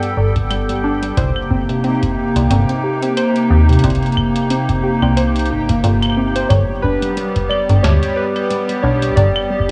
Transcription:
Already playing: G3 B3 G4 A4 G5
0.03 closed hi-hat
0.17 G1
0.36 kick, closed hi-hat
0.51 G3, closed hi-hat, claves
0.69 G3, closed hi-hat
0.84 D4
1.02 G3, closed hi-hat
1.17 C2 C3 A#3 D#4 C5, kick, closed hi-hat
1.36 claves
1.51 C4, kick
1.69 C3, closed hi-hat
1.84 C4, closed hi-hat
2.02 kick, closed hi-hat
2.36 C2, closed hi-hat
2.50 G1 C4, closed hi-hat
2.69 C4, closed hi-hat
2.84 G4
3.02 C4, closed hi-hat
3.17 C5, closed hi-hat, claves
3.36 closed hi-hat
3.50 D#2 C4
3.69 C3, closed hi-hat
3.73 closed hi-hat
3.79 closed hi-hat
3.84 C2 C4, kick, closed hi-hat
3.90 closed hi-hat
3.95 closed hi-hat
4.03 closed hi-hat
4.06 closed hi-hat
4.12 closed hi-hat
4.17 kick, claves
4.36 closed hi-hat
4.50 C4, closed hi-hat
4.69 C4, kick, closed hi-hat
4.84 G4
5.02 C2 C4, claves
5.17 C5, closed hi-hat
5.36 closed hi-hat
5.39 closed hi-hat
5.46 closed hi-hat
5.50 G1 D#4
5.69 A#3, kick, closed hi-hat
5.84 G1 F4, closed hi-hat
6.03 closed hi-hat, claves
6.05 claves
6.10 claves
6.12 claves
6.15 C4, claves
6.36 C5, closed hi-hat
6.49 G1 G3 B3 G4 C#5, kick, closed hi-hat, claves
6.69 G3
6.82 D4 B4, kick
7.02 G3, closed hi-hat
7.17 G3, closed hi-hat
7.36 kick, closed hi-hat
7.49 G3 D5, claves
7.69 G1 G2, closed hi-hat
7.82 D2 G3 C#5, snare, closed hi-hat
8.02 closed hi-hat
8.16 B4
8.36 closed hi-hat, claves
8.50 G3, closed hi-hat
8.69 G3, closed hi-hat
8.82 B1 D4 C#5
9.02 G3, closed hi-hat
9.16 G1 G3 D5, kick, closed hi-hat
9.36 claves
9.50 G3
9.60 kick

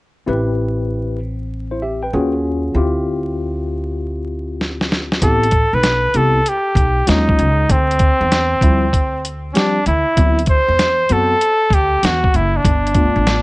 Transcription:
0.26 A1 C4 E4 G4 B4
1.71 E4 C5
1.82 G4 E5
2.03 B4 G5
2.13 D#2 C#4 F4 F#4 G#4
2.74 D2 C4 E4 F4 G4
4.61 snare
4.81 snare
4.92 snare
5.12 snare
5.22 A1 B3 C4 E4 G4 A4, kick, closed hi-hat
5.43 closed hi-hat
5.51 kick, closed hi-hat
5.73 B1 B4
5.83 snare, closed hi-hat
6.14 C2 B3 C4 E4 G4 A4, closed hi-hat
6.46 G4, closed hi-hat
6.75 B1, kick, closed hi-hat
7.07 D#2 F#3 G#3 C#4 D#4 F4, snare, closed hi-hat
7.29 kick
7.39 C#2, closed hi-hat
7.69 D2 C4, kick, closed hi-hat
7.91 closed hi-hat
7.99 kick, closed hi-hat
8.21 E2
8.32 snare, closed hi-hat
8.61 D2 F3 G3 C4 E4, kick, closed hi-hat
8.93 kick, closed hi-hat
9.25 closed hi-hat
9.53 F3 G3 C4 C#4 G4, closed hi-hat
9.57 D4, snare
9.86 D2 E4, closed hi-hat
10.17 D2 F#3 B3 C4 E4, kick, closed hi-hat
10.39 closed hi-hat
10.46 C5, kick, closed hi-hat
10.68 E2
10.79 snare, closed hi-hat
11.09 F#2 F#3 B3 C4 F#4 A4, closed hi-hat
11.41 closed hi-hat
11.70 D2 G4, kick, closed hi-hat
12.03 E2 F#4, snare, closed hi-hat
12.24 kick
12.34 F#1 E4, closed hi-hat
12.57 D4
12.65 G1, kick, closed hi-hat
12.87 closed hi-hat
12.95 A3 B3 D4 F4, kick, closed hi-hat
13.16 A1
13.27 snare, closed hi-hat

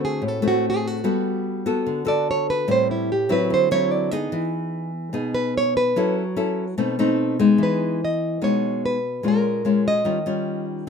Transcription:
Already playing: D3 A3 C4 F#4
0.05 G#4
0.22 A2
0.28 A4
0.42 A3 C4 F#4
0.48 F#4
0.70 G#4
0.87 F#4
1.04 G3 B3 F#4 A4
1.66 B3 F#4 A4
1.86 D3
2.05 B3 F#4 A4 D5
2.31 C#5
2.50 B4
2.68 A2 G3 C4 E4 C5
2.91 E4
3.12 G4
3.29 F#3 C4 E4 B4
3.50 D3 C5
3.71 F#3 C4 E4 C#5
3.92 D5
4.11 B3 D#4 G#4 D#5
4.32 E3
5.13 B2 B3 D#4 G#4
5.35 B4
5.58 C#5
5.77 B4
5.96 F#3 C#4 E4 A4
6.36 C#4 E4 A4
6.78 B2 A3 C4 D#4
6.99 A3 C4 D#4
7.39 G#3 B3 D#4
7.58 E3
7.63 B4
8.05 D#5
8.42 B2 G#3 B3 D#4 C#5
8.86 B4
9.23 A#2 G#3 C#4 F4
9.28 A#4
9.65 G#3 C#4 F4
9.88 D#5
10.05 D#3 G3 C#4 F4
10.26 G3 C#4 F4

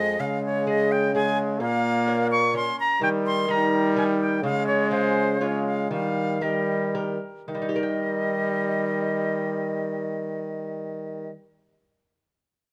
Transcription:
Already playing: F2 G#3 C4 G#4 D#5
0.19 C#3 G#3 F5
0.45 C#5
0.66 C#4 G#4 D#5
0.91 G5
1.13 G#3 C#4 G#4 G#5
1.60 A#2 A#3 F5
2.08 C#4 A#4
2.31 C#6
2.54 C#4 A#4 C6
2.80 A#5
3.00 D#3 G3 G5
3.26 C6
3.48 G3 D#4 A#4 A#5
3.96 D#4 A#4 G#5
4.20 G5
4.42 C#3 G#3 F5
4.66 C#5
4.90 G#3 C#4 F4 C5
5.40 G#3 F4 C#5
5.66 F5
5.90 D#3 G3 F5
6.41 G3 G4 A#4 D#5
6.95 G4 A#4
7.48 D#3 G3 D#5
7.55 G3
7.62 D#4
7.69 G4
7.76 A#4
7.83 G5

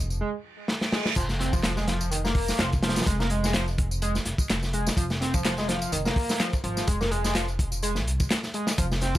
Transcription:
Already playing: F1
0.10 tambourine
0.21 G#3, reverse cymbal
0.68 snare
0.81 snare
0.92 G#3, snare
1.05 snare
1.16 F1 F3, kick, closed hi-hat, crash, tambourine, sub drop
1.29 snare, tambourine
1.40 C4, snare, closed hi-hat
1.53 F3, kick, tambourine
1.63 F3, snare, clap, closed hi-hat, tambourine
1.77 G#3, snare, tambourine
1.87 F3, snare, closed hi-hat
2.01 tambourine
2.11 D#3, closed hi-hat, tambourine
2.24 A#3, snare, tambourine
2.35 kick, open hi-hat
2.48 snare, tambourine
2.59 F1 F3, snare, clap, closed hi-hat, tambourine
2.72 kick, tambourine
2.83 F3, snare, closed hi-hat
2.89 snare, closed hi-hat
2.96 snare, closed hi-hat, tambourine
3.02 snare, closed hi-hat
3.07 F1 G#3, kick, closed hi-hat, tambourine
3.20 A#3, snare, tambourine
3.30 G#3, closed hi-hat
3.44 snare, tambourine
3.54 F3, snare, clap, closed hi-hat, tambourine
3.68 tambourine
3.78 kick, closed hi-hat
3.91 tambourine
4.02 G#3, closed hi-hat, tambourine
4.15 snare, tambourine
4.25 F1, snare, closed hi-hat
4.38 muted upright bass stroke, kick, tambourine
4.49 F1, snare, clap, closed hi-hat, tambourine
4.63 snare, tambourine
4.73 G#3, closed hi-hat
4.87 snare, tambourine
4.97 F1 F3, kick, closed hi-hat, tambourine
5.10 snare, tambourine
5.21 C4, snare, closed hi-hat
5.34 F3, kick, tambourine
5.45 F3, snare, clap, closed hi-hat, tambourine
5.58 G#3, snare, tambourine
5.68 F3, snare, closed hi-hat
5.82 tambourine
5.92 F1 D#3, closed hi-hat, tambourine
6.05 A#3, snare, tambourine
6.16 kick, open hi-hat
6.29 snare, tambourine
6.40 F3, snare, clap, closed hi-hat, tambourine
6.53 kick, tambourine
6.64 G#1 F3, closed hi-hat
6.77 snare, tambourine
6.87 F1 G#3, kick, closed hi-hat, tambourine
7.01 A#3, snare, tambourine
7.11 G#3, closed hi-hat
7.24 snare, tambourine
7.35 F3, snare, clap, closed hi-hat, tambourine
7.48 tambourine
7.59 kick, closed hi-hat
7.72 tambourine
7.82 G#3, closed hi-hat, tambourine
7.95 snare, tambourine
8.06 C2, closed hi-hat
8.20 kick, tambourine
8.30 snare, clap, closed hi-hat, tambourine
8.43 snare, tambourine
8.54 G#3, closed hi-hat
8.67 snare, tambourine
8.78 F1 F3, kick, closed hi-hat, tambourine
8.91 snare, tambourine
9.01 C4, snare, closed hi-hat
9.15 tambourine

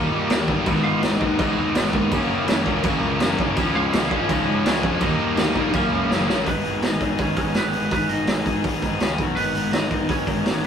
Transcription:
Already playing: D#2 D#3 G3 A#3 D#4
0.12 A#2
0.29 D#2 D#3 G3 A#3 D#4, snare, crash
0.47 G1 D#3 G3 A#3 D#4, kick
0.65 G#1 G#2 D#3 G#3 B3 D#4, kick, crash
0.84 G#1 F4 F5
1.02 G#1 G#2 D#3 G#3 B3 D#4 D#5, snare, crash
1.20 D#2 G#2 D#3 G#3 B3 D#4, kick
1.38 G#1 G#2 D#3 G#3 B3 D#4 D#5, kick, crash
1.57 D#2
1.75 G#1 G#2 D#3 G#3 B3 D#4 B4, snare, crash
1.93 G#1 G#2 D#3 G#3 A#3 B3 D#4 A#4, kick
2.11 F#1 F#2 C#3 F#3 A#3 C#4, kick, crash
2.29 F#1
2.48 F#1 F#2 C#3 F#3 A#3 C#4, snare, crash
2.66 C#2 F#2 C#3 F#3 A#3 C#4, kick
2.83 F#1 F#2 C#3 F#3 A#3, kick, crash
2.87 C#4
3.02 C#2
3.20 F#1 F#2 C#3 F#3 A#3 C#4, snare, crash
3.38 F#1 F#2 C#3 F#3 A#3 C#4, kick
3.56 C#2 C#3 F3 G#3 C#4, kick, crash
3.75 C#2 F4 F5
3.93 C#2 C#3 F3 G#3 C#4, snare, crash
4.11 G#1 C#3 F3 G#3 C#4, kick
4.28 C#2 C#3 F3 G#3 C#4 D#4 D#5, kick, crash
4.47 G#2
4.65 C#2 C#3 F3 G#3 C#4 C#5, snare, crash
4.82 F2 C#3 F3 G#3 C#4, kick
5.00 D#2 D#3 G3 A#3 D#4 D#5, kick, crash
5.19 D#2
5.37 D#2 D#3 G3 A#3 D#4, snare, crash
5.55 A#1 D#3 G3 A#3 D#4, kick
5.73 F#1 F#2 C#3 F#3 A#3 C#4 A#4, kick, crash
5.90 C#2
6.10 F#1 F#2 C#3 F#3 A#3 C#4, snare
6.28 A#1 F#2 C#3 F#3 A#3 C#4, snare
6.46 G#1 G#2 D#3 G#3 B3 D#4 G#4 B4, kick, open hi-hat
6.64 G#2 D#3 G#3 B3 D#4 G#4, open hi-hat
6.82 G#1 G#2 D#3 G#3 B3 D#4 G#4 D#5, snare, open hi-hat
7.00 G#2 D#3 G#3 B3 D#4 G#4, kick, open hi-hat
7.18 G#1 G#2 D#3 G#3 B3 C#4 D#4 G#4 C#5, kick, open hi-hat
7.36 G#2 D#3 G#3 B3 D#4 G#4, kick, open hi-hat
7.54 G#1 G#2 D#3 G#3 B3 D#4 G#4 B4, snare, open hi-hat
7.73 G#2 D#3 G#3 B3 D#4 G#4, open hi-hat
7.91 G#1 G#2 D#3 G#3 B3 D#4 G#4 B4, kick, open hi-hat
8.09 G#1 G#2 D#3 G#3 B3 D#4 G#4 D#5, open hi-hat
8.27 G#1 G#2 D#3 G#3 B3 D#4 G#4, snare, open hi-hat
8.46 G#2 D#3 G#3 B3 D#4 G#4, kick, open hi-hat
8.64 G#1 G#2 D#3 G#3 B3 D#4 G#4, kick, open hi-hat
8.82 G#2 D#3 G#3 B3 D#4 G#4, kick, open hi-hat
9.00 C#2 C#3 G#3 C#4 G#4, snare, open hi-hat
9.18 B1 B2 F#3 B3 F#4, kick, open hi-hat
9.36 G#1 G#2 D#3 G#3 B3 D#4 B4, open hi-hat
9.55 G#2 D#3 G#3 B3 D#4, open hi-hat
9.73 G#1 G#2 D#3 G#3 B3 D#4 D#5, snare, open hi-hat
9.90 G#2 D#3 G#3 B3 D#4, kick, open hi-hat
10.08 G#1 G#2 D#3 G#3 B3 C#4 D#4 C#5, kick, open hi-hat
10.27 G#2 D#3 G#3 B3 D#4, kick, open hi-hat
10.44 G#1 G#2 D#3 G#3 B3 D#4, snare, open hi-hat
10.63 G#2 D#3, open hi-hat

